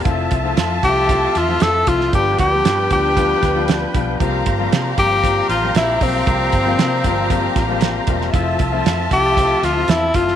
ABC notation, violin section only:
X:1
M:4/4
L:1/8
Q:1/4=116
K:F
V:1 name="Violin section"
[Fea]8 | [D=Bg]8 | [Gfb]8- | [Gfb]8 |
[Fea]8 |]